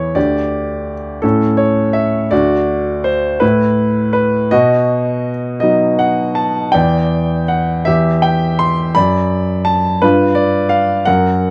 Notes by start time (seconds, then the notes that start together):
Already playing: E2 E4 C#5
0.15 D2 G4 D5
1.22 A2 C#4 A4
1.57 C#5
1.93 E5
2.31 D2 F#4 D5
3.04 C5
3.40 A2 E4 B4
4.13 B4
4.51 B2 F#4 D#5
5.60 F#3 B3 D#4 D#5
5.99 F#5
6.35 A5
6.72 E2 D5 G5
7.48 F#5
7.85 E2 G4 E5
8.22 G5
8.59 C6
8.95 F#2 D5 B5
9.65 A5
10.02 G2 F4 B4
10.35 D5
10.69 F5
11.05 F#2 A#4 F#5